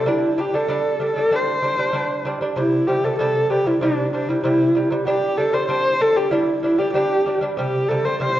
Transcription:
0.06 0.32 G3 medium
0.06 0.32 D4 medium
0.06 0.41 E4 medium
0.38 0.51 G3 medium
0.38 0.51 D4 medium
0.38 0.56 G4 medium
0.54 0.66 G3 medium
0.54 0.67 D4 medium
0.54 1.01 A4 medium
0.68 0.94 G3 medium
0.68 0.95 D4 loud
1.00 1.13 G3 medium
1.00 1.14 D4 medium
1.05 1.37 A4 medium
1.16 1.29 G3 medium
1.16 1.30 D4 medium
1.31 1.57 G3 medium
1.31 1.57 D4 loud
1.35 2.27 C5 medium
1.62 1.75 G3 medium
1.62 1.76 D4 medium
1.78 1.91 G3 medium
1.78 1.92 D4 medium
1.93 2.19 G3 medium
1.93 2.19 D4 medium
2.25 2.38 G3 medium
2.25 2.39 D4 medium
2.41 2.54 G3 medium
2.41 2.54 D4 medium
2.56 2.81 C3 medium
2.56 2.82 G3 medium
2.56 2.88 E4 medium
2.87 3.00 C3 medium
2.87 3.01 G3 medium
2.87 3.06 G4 medium
3.03 3.16 C3 medium
3.03 3.17 G3 medium
3.03 3.18 A4 medium
3.19 3.44 C3 medium
3.19 3.45 G3 medium
3.19 3.46 A4 medium
3.46 3.63 C3 medium
3.46 3.68 G4 medium
3.46 3.51 A4 medium
3.52 3.64 G3 medium
3.66 3.79 C3 medium
3.66 3.79 G3 medium
3.66 3.82 E4 medium
3.81 4.07 C3 medium
3.81 4.07 G3 loud
3.81 4.12 D4 medium
4.13 4.26 C3 medium
4.13 4.26 G3 medium
4.13 4.30 D4 medium
4.28 4.41 C3 medium
4.28 4.42 G3 medium
4.28 4.43 E4 medium
4.43 4.69 C3 medium
4.43 4.70 G3 medium
4.43 4.88 E4 medium
4.75 4.88 C3 medium
4.75 4.89 G3 medium
4.90 5.03 C3 medium
4.90 5.04 G3 medium
5.07 5.32 G3 medium
5.07 5.33 D4 loud
5.07 5.39 G4 loud
5.38 5.51 G3 medium
5.38 5.52 D4 medium
5.38 5.55 A4 loud
5.53 5.66 G3 medium
5.53 5.67 D4 medium
5.53 5.68 C5 medium
5.69 5.94 G3 medium
5.69 5.95 D4 medium
5.69 6.03 C5 loud
6.00 6.13 G3 medium
6.00 6.14 D4 medium
6.00 6.18 A4 loud
6.15 6.28 G3 medium
6.15 6.29 D4 medium
6.15 6.33 G4 medium
6.31 6.57 G3 loud
6.31 6.57 D4 loud
6.31 6.62 E4 medium
6.63 6.76 G3 medium
6.63 6.76 D4 medium
6.63 6.80 E4 medium
6.78 6.91 G3 medium
6.78 6.92 D4 medium
6.78 6.93 G4 medium
6.93 7.19 G3 medium
6.93 7.20 D4 loud
6.93 7.38 G4 medium
7.26 7.39 G3 medium
7.26 7.39 D4 medium
7.41 7.54 G3 medium
7.41 7.55 D4 medium
7.57 7.82 C3 medium
7.57 7.83 G3 loud
7.57 7.90 G4 medium
7.89 8.02 C3 medium
7.89 8.02 G3 medium
7.89 8.06 A4 medium
8.05 8.17 C3 medium
8.05 8.18 G3 medium
8.05 8.20 C5 medium
8.20 8.40 C3 medium
8.20 8.40 G3 loud
8.20 8.40 C5 loud

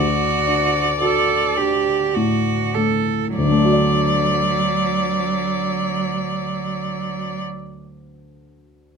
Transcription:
0.00 3.32 D2 soft
0.00 0.90 F#4 medium
0.00 2.76 D5 medium
0.47 1.35 D4 soft
1.01 1.92 F#4 soft
1.01 1.59 A4 medium
1.57 2.51 D4 soft
1.57 2.16 G4 soft
2.15 3.13 A2 soft
2.15 2.76 F#4 medium
2.75 3.37 A3 soft
2.75 3.36 A4 soft
3.37 7.42 D2 soft
3.37 7.41 F#3 medium
3.37 7.41 D5 medium
3.44 7.49 D3 soft
3.51 7.56 A3 soft
3.58 7.63 D4 soft
3.65 7.70 F#4 soft
3.72 7.77 D5 soft

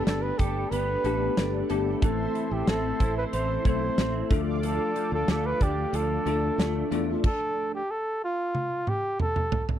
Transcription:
0.00 0.62 A3 medium
0.00 0.63 B3 medium
0.00 0.71 B3 medium
0.00 0.63 D4 medium
0.00 0.39 G4 medium
0.00 0.63 G4 medium
0.00 7.20 A4 medium
0.00 2.00 D5 medium
0.00 2.00 G5 medium
0.00 2.00 B5 medium
0.06 0.30 G1 medium
0.06 1.37 D4 medium
0.06 0.24 A4 medium
0.06 snare medium
0.06 closed hi-hat medium
0.22 0.40 B4 medium
0.38 0.63 G1 medium
0.38 0.73 G4 medium
0.38 1.05 A4 medium
0.38 kick medium
0.38 closed hi-hat medium
0.71 0.95 G1 medium
0.71 2.09 B3 medium
0.71 1.69 B4 medium
0.71 closed hi-hat medium
1.04 1.28 A1 medium
1.04 1.65 A3 medium
1.04 1.65 B3 medium
1.04 1.65 D4 medium
1.04 1.65 G4 medium
1.04 1.69 A4 medium
1.04 closed hi-hat medium
1.37 1.61 G1 medium
1.37 2.09 D4 medium
1.37 snare loud
1.37 closed hi-hat medium
1.69 1.94 G1 medium
1.69 2.00 A3 medium
1.69 2.00 B3 medium
1.69 2.00 D4 medium
1.69 2.00 G4 medium
1.69 5.20 A4 medium
1.69 closed hi-hat medium
2.02 2.26 A1 loud
2.02 2.34 E3 medium
2.02 3.23 A3 medium
2.02 3.23 C4 medium
2.02 3.23 E4 medium
2.02 3.24 A4 medium
2.02 2.54 A4 medium
2.02 4.28 C5 medium
2.02 4.28 E5 medium
2.02 4.28 C6 medium
2.02 kick loud
2.02 closed hi-hat medium
2.35 3.32 E3 medium
2.35 closed hi-hat medium
2.51 2.63 A1 medium
2.51 2.68 G4 medium
2.67 2.91 A1 medium
2.67 3.97 C4 medium
2.67 3.14 A4 medium
2.67 snare loud
2.67 closed hi-hat medium
3.00 3.24 A1 medium
3.00 3.65 E4 medium
3.00 kick medium
3.00 closed hi-hat medium
3.17 3.25 B4 medium
3.33 3.56 A1 medium
3.33 4.30 E3 medium
3.33 3.64 C5 loud
3.33 closed hi-hat loud
3.65 3.89 B1 medium
3.65 4.25 A3 medium
3.65 4.26 C4 medium
3.65 4.26 E4 medium
3.65 4.37 E4 medium
3.65 4.26 A4 medium
3.65 4.28 C5 medium
3.65 kick medium
3.65 closed hi-hat medium
3.98 4.21 A1 loud
3.98 4.37 C4 medium
3.98 snare loud
3.98 closed hi-hat medium
4.30 4.78 D2 medium
4.30 4.63 F3 medium
4.30 5.51 A3 medium
4.30 5.51 D4 medium
4.30 5.52 F4 medium
4.30 5.52 A4 medium
4.30 7.21 D5 medium
4.30 7.22 F5 medium
4.30 7.22 D6 medium
4.30 kick loud
4.30 closed hi-hat medium
4.63 4.96 F3 medium
4.63 5.10 A4 medium
4.63 closed hi-hat medium
4.96 5.93 F3 medium
4.96 closed hi-hat medium
5.12 5.24 D2 medium
5.12 5.28 A4 medium
5.28 5.52 D2 medium
5.28 6.59 A3 medium
5.28 5.48 A4 medium
5.28 snare loud
5.28 closed hi-hat medium
5.46 5.64 B4 loud
5.61 5.84 D2 loud
5.61 6.26 D4 medium
5.61 5.97 G4 medium
5.61 kick medium
5.61 closed hi-hat medium
5.93 6.17 D2 loud
5.93 7.81 F3 medium
5.93 6.92 A4 medium
5.93 closed hi-hat loud
6.26 6.49 D2 medium
6.26 6.86 A3 medium
6.26 6.87 D4 medium
6.26 6.91 D4 medium
6.26 6.87 F4 medium
6.26 6.87 A4 medium
6.26 closed hi-hat medium
6.58 6.82 D2 medium
6.58 7.81 A3 medium
6.58 snare loud
6.58 closed hi-hat medium
6.91 7.15 E2 medium
6.91 7.22 A3 medium
6.91 7.22 D4 medium
6.91 7.81 D4 medium
6.91 7.22 F4 medium
6.91 7.22 A4 medium
6.91 closed hi-hat medium
7.24 7.70 A4 loud
7.24 kick loud
7.24 crash medium
7.75 7.92 G4 medium
7.91 8.23 A4 loud
8.24 8.90 F4 loud
8.55 high tom medium
8.87 9.20 G4 medium
8.87 mid tom medium
9.20 9.66 A4 medium
9.20 mid tom medium
9.36 mid tom medium
9.52 floor tom loud
9.69 floor tom medium

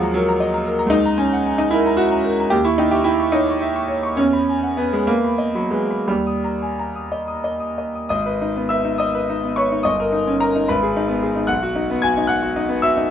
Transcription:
0.00 0.89 D#2 medium
0.00 0.13 F3 medium
0.00 0.14 F#3 medium
0.00 0.95 G#3 medium
0.00 0.95 F5 soft
0.00 0.95 F#5 soft
0.00 0.03 A#5 soft
0.00 0.23 A#5 soft
0.14 0.93 F#3 medium
0.14 0.35 A#4 medium
0.29 0.48 A#5 soft
0.40 0.61 D#5 soft
0.54 0.74 A#5 soft
0.66 0.87 A#4 soft
0.79 0.93 A#5 soft
0.87 2.45 C#2 medium
0.87 1.18 D#4 medium
1.06 1.27 A#5 soft
1.18 1.58 C#4 medium
1.18 1.40 G#5 soft
1.33 1.46 F#5 soft
1.46 1.67 G#5 medium
1.58 1.72 D#4 medium
1.58 1.80 A#5 soft
1.71 1.98 E4 medium
1.71 1.93 A#4 medium
1.86 2.07 A#5 soft
1.97 2.51 F#4 loud
1.97 2.19 E5 soft
2.11 2.33 A#5 medium
2.24 2.46 A#4 soft
2.40 2.53 A#5 soft
2.50 4.12 D#2 medium
2.50 2.64 G4 loud
2.64 2.78 E4 medium
2.64 2.86 C#6 medium
2.78 2.92 D#4 medium
2.78 3.00 G5 soft
2.91 3.05 G4 medium
2.91 3.05 E5 soft
3.04 3.32 E4 medium
3.04 3.27 G5 medium
3.20 3.41 C#6 soft
3.32 4.16 D#4 medium
3.32 3.55 C#5 soft
3.48 3.69 C#6 soft
3.62 3.83 E5 medium
3.76 3.97 C#6 soft
3.88 4.11 C#5 soft
4.03 4.17 C#6 soft
4.17 6.04 E2 medium
4.17 4.76 C#4 medium
4.33 4.56 B5 soft
4.49 4.72 G#5 soft
4.63 4.77 F#5 soft
4.77 4.92 B3 medium
4.77 5.01 G#5 soft
4.93 5.07 G#3 medium
4.93 5.17 B5 soft
5.07 5.54 A#3 medium
5.07 5.32 B4 soft
5.24 5.48 B5 soft
5.38 5.64 D#5 soft
5.55 5.71 F#3 medium
5.55 5.82 B5 soft
5.71 6.07 G#3 medium
5.71 6.00 B4 soft
5.90 6.08 B5 soft
6.08 8.07 D#2 soft
6.08 7.78 G3 medium
6.27 6.54 D#6 soft
6.44 6.71 A#5 soft
6.62 6.78 G#5 soft
6.79 7.05 A#5 soft
6.96 7.21 D#6 soft
7.12 7.38 D#5 soft
7.28 7.54 D#6 soft
7.44 7.71 D#5 soft
7.60 7.88 D#6 soft
7.78 8.04 D#5 soft
7.95 8.08 D#6 soft
8.09 9.80 G#1 medium
8.09 8.66 D#5 medium
8.09 8.70 D#6 medium
8.26 8.50 B4 soft
8.42 8.65 D#4 soft
8.57 8.80 B3 soft
8.69 8.94 B4 soft
8.69 8.98 E5 medium
8.69 8.99 E6 medium
8.85 9.28 D#4 soft
8.98 9.53 D#5 medium
8.98 9.56 D#6 medium
9.15 9.38 B4 soft
9.30 9.52 D#4 soft
9.44 9.65 B3 soft
9.56 9.79 B4 soft
9.56 9.83 C#5 medium
9.56 9.84 C#6 medium
9.72 9.85 D#4 soft
9.83 10.66 G1 medium
9.83 10.37 D#5 medium
9.83 10.40 D#6 medium
10.00 10.21 A#4 medium
10.13 10.35 D#4 soft
10.27 10.50 C#4 soft
10.40 10.67 A#4 medium
10.40 10.69 A#5 medium
10.56 10.69 D#4 soft
10.68 11.47 G#1 medium
10.68 11.45 B4 medium
10.68 11.49 B5 medium
10.83 11.04 G#4 soft
10.96 11.17 D#4 medium
11.08 11.30 B3 soft
11.23 11.44 G#4 medium
11.36 11.49 D#4 soft
11.47 13.06 B1 medium
11.47 11.98 F#5 medium
11.47 12.01 F#6 medium
11.63 11.84 F#4 medium
11.75 11.97 D#4 medium
11.90 12.11 B3 medium
12.02 12.24 F#4 medium
12.02 12.28 G#5 medium
12.02 12.29 G#6 loud
12.17 12.55 D#4 medium
12.27 12.79 F#5 medium
12.27 12.82 F#6 loud
12.43 12.64 F#4 medium
12.56 12.78 D#4 medium
12.69 12.91 B3 medium
12.82 13.05 F#4 medium
12.82 13.09 E5 medium
12.82 13.10 E6 loud
12.97 13.11 D#4 medium

